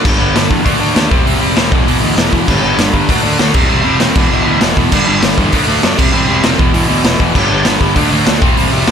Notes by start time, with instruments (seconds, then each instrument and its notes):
0.04 picked electric bass G1, distorted electric guitar G2 D3 G3, kick, crash
0.19 picked electric bass G1, distorted electric guitar G2 D3 G3
0.35 picked electric bass G1, distorted electric guitar G2 D3 G3, snare, open hi-hat
0.49 picked electric bass E2, distorted electric guitar G2 D3 G3, kick
0.64 picked electric bass D2, distorted electric guitar D3 A3 D4, kick, open hi-hat
0.80 picked electric bass D2, distorted electric guitar D3 A3 D4
0.94 picked electric bass D#2, distorted electric guitar D3 A3 D4, snare, open hi-hat
1.10 picked electric bass E1, distorted electric guitar C3 G3 C4, kick
1.26 picked electric bass E1, distorted electric guitar C3 G3 C4, open hi-hat
1.40 picked electric bass E1, distorted electric guitar C3 G3 C4
1.56 picked electric bass E1, distorted electric guitar C3 G3 C4, snare, open hi-hat
1.71 picked electric bass E1, distorted electric guitar E2 B2 E3, kick
1.87 picked electric bass E1, distorted electric guitar E2 B2 E3, open hi-hat
2.01 picked electric bass D2, distorted electric guitar E2 B2 E3
2.16 picked electric bass E1, distorted electric guitar E2 B2 E3, snare, open hi-hat
2.33 picked electric bass E1, distorted electric guitar E2 B2 E3, kick
2.48 picked electric bass G1, distorted electric guitar G2 D3 G3, kick, crash
2.61 picked electric bass G1, distorted electric guitar G2 D3 G3
2.78 picked electric bass G1, distorted electric guitar G2 D3 G3, snare, open hi-hat
2.93 picked electric bass G1, distorted electric guitar G2 D3 G3, kick
3.09 picked electric bass D2, distorted electric guitar D3 A3 D4, kick, open hi-hat
3.23 picked electric bass D2, distorted electric guitar D3 A3 D4
3.38 picked electric bass D2, distorted electric guitar D3 A3 D4, snare, open hi-hat
3.54 picked electric bass E1, distorted electric guitar C3 G3 C4, kick, crash
3.69 picked electric bass E1, distorted electric guitar C3 G3 C4
3.84 picked electric bass E1, distorted electric guitar C3 G3 C4
4.00 picked electric bass E1, distorted electric guitar C3 G3 C4, snare, open hi-hat
4.15 picked electric bass E1, distorted electric guitar E2 B2 E3, kick, crash
4.31 picked electric bass E1, distorted electric guitar E2 B2 E3
4.46 picked electric bass D2, distorted electric guitar E2 B2 E3
4.61 picked electric bass E1, distorted electric guitar E2 B2 E3, snare, open hi-hat
4.77 picked electric bass E1, distorted electric guitar E2 B2 E3, kick
4.92 picked electric bass G1, distorted electric guitar G2 D3 G3, kick, crash
5.07 picked electric bass G1, distorted electric guitar G2 D3 G3
5.21 picked electric bass G1, distorted electric guitar G2 D3 G3, snare, open hi-hat
5.38 picked electric bass E2, distorted electric guitar G2 D3 G3, kick
5.52 picked electric bass D2, distorted electric guitar D3 A3 D4, kick, open hi-hat
5.67 picked electric bass D2, distorted electric guitar D3 A3 D4
5.82 picked electric bass F#2, distorted electric guitar D3 A3 D4, snare, open hi-hat
5.97 picked electric bass E1, distorted electric guitar C3 G3 C4, kick, crash
6.13 picked electric bass E1, distorted electric guitar C3 G3 C4
6.28 picked electric bass E1, distorted electric guitar C3 G3 C4
6.44 picked electric bass E1, distorted electric guitar C3 G3 C4, snare, open hi-hat
6.58 picked electric bass E1, distorted electric guitar E2 B2 E3, kick
6.74 picked electric bass E1, distorted electric guitar E2 B2 E3, open hi-hat
6.88 picked electric bass D2, distorted electric guitar E2 B2 E3
7.04 picked electric bass E1, distorted electric guitar E2 B2 E3, snare, open hi-hat
7.20 picked electric bass E1, distorted electric guitar E2 B2 E3, kick
7.35 picked electric bass G1, distorted electric guitar G2 D3 G3, kick, crash
7.50 picked electric bass G1, distorted electric guitar G2 D3 G3
7.65 picked electric bass G1, distorted electric guitar G2 D3 G3, snare, open hi-hat
7.81 picked electric bass G1, distorted electric guitar G2 D3 G3, kick
7.95 picked electric bass D2, distorted electric guitar D3 A3 D4, kick, open hi-hat
8.11 picked electric bass D2, distorted electric guitar D3 A3 D4
8.26 picked electric bass D2, distorted electric guitar D3 A3 D4, snare, open hi-hat
8.41 picked electric bass E1, distorted electric guitar C3 G3 C4, kick
8.57 picked electric bass E1, distorted electric guitar C3 G3 C4, open hi-hat
8.72 picked electric bass E1, distorted electric guitar C3 G3 C4
8.88 distorted electric guitar C3 C4, snare, open hi-hat